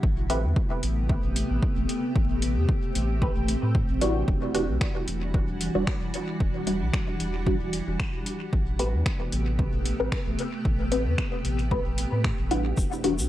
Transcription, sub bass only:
0.03 A1
0.44 E2
0.83 A1
1.24 A1
1.50 A1
1.77 A1
2.16 A1
2.57 E2
2.95 A1
3.36 A1
3.63 A2
3.89 A1
4.28 E1
4.69 B1
5.08 E1
5.48 E1
5.75 E1
6.01 E1
6.40 E1
6.81 B1
7.20 E1
7.61 E1
7.87 E1
8.14 E1
8.53 A1
8.94 E2
9.32 A1
9.73 A1
10.00 A1
10.26 A1
10.65 A1
11.06 E2
11.45 A1
11.86 A1
12.12 A2
12.39 A1
12.77 E1
13.18 B1

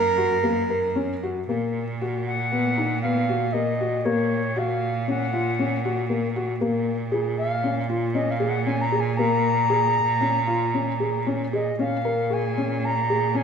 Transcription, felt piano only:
0.18 F#4
0.43 A#3
0.70 A#4
0.96 C#4
1.23 F#4
1.49 A#3
2.01 F#4
2.52 B3
2.78 D#4
3.04 B3
3.29 F#4
3.54 A#3
3.81 F#4
4.05 A#3
4.56 F#4
5.08 C#4
5.33 F4
5.59 C#4
5.85 F#4
6.10 A#3
6.36 F#4
6.61 A#3
7.12 G#4
7.64 C#4
7.89 F4
8.14 C#4
8.40 G#4
8.66 C#4
8.92 G#4
9.19 A#3
9.70 G#4
10.21 C#4
10.47 F4
10.74 C#4
11.00 G#4
11.27 C#4
11.53 G#4
11.79 C#4
12.05 A#4
12.58 C#4
13.10 G#4
13.35 C#4

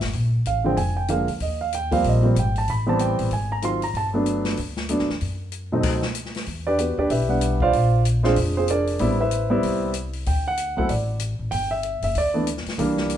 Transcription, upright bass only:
0.03 G1
0.14 A#1
0.46 A1
0.77 F1
1.28 C2
1.40 D#2
2.04 A#1
2.36 G#1
2.68 A1
3.19 A1
3.31 G#1
3.94 G1
4.58 D2
5.00 F#2
5.10 E2
5.21 F#2
6.47 E2
6.98 D#2
7.10 B1
7.73 A#1
8.36 F1
9.00 A1
9.64 C2
10.26 D2
10.77 C2
10.89 A1
11.39 A1
11.52 G1
12.02 F#1
12.15 D2
12.66 muted upright bass stroke
12.78 C2

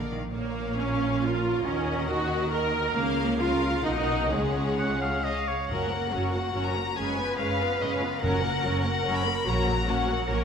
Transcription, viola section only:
Already playing: A#3
0.35 A#3
0.78 C#4
1.23 F4
1.65 C#4
2.10 F#4
2.54 A#4
2.96 A#3
3.40 F4
3.84 D#4
3.95 D#4
4.31 G#3
5.70 F#3 C#4
5.91 A#3
6.12 F#3 C#4
6.33 A#3
6.55 F#3 C#4
6.77 A#3
6.98 G#3 C#4
7.18 B3
7.38 G#3 C#4
7.60 B3
7.81 G#3 C#4
8.02 B3
8.22 F#3 C#4
8.43 A#3
8.64 F#3 C#4
8.85 A#3
9.06 F#3 C#4
9.27 A#3
9.46 A#3 C#4
9.68 F#3 A#3
9.88 A#3 C#4
10.08 F#3 A#3
10.29 A#3 C#4

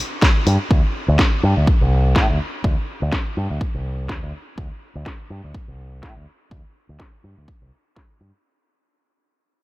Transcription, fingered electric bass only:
0.47 G2
0.71 D2
1.08 D2
1.43 G2
1.57 D2
1.81 C2
2.16 A2
2.29 D2
2.64 D2
3.02 D2
3.37 G2
3.50 D2
3.74 C2
4.09 D2
4.23 D2
4.58 D2
4.95 D2
5.30 G2
5.44 D2
5.68 C2
6.03 A2
6.16 D2
6.51 D2
6.89 D2
7.24 G2
7.37 D2
7.62 C2
8.21 G2

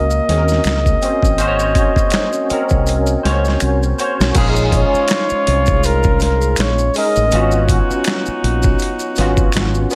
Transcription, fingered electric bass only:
Already playing: C#2
0.28 D#2
0.65 C#2
1.23 A1
1.39 G#1
1.97 muted fingered electric bass stroke
2.51 muted fingered electric bass stroke
2.71 C2
3.25 C#2
3.62 C2
4.20 B1
4.35 A#1
4.94 muted fingered electric bass stroke
5.31 muted fingered electric bass stroke
5.48 C2
6.58 A#1
7.17 A1
7.33 G#1
7.90 muted fingered electric bass stroke
8.28 muted fingered electric bass stroke
8.44 A#1
9.18 G#1
9.55 G#1

